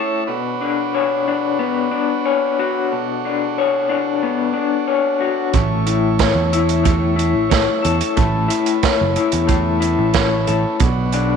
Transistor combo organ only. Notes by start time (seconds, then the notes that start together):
Already playing: C#4 E4 A4 C#5
0.27 D4 F#4 B4 C#5
2.91 A4
5.54 C#4 E4 A4
8.17 B4
10.82 D4 F#4 C#5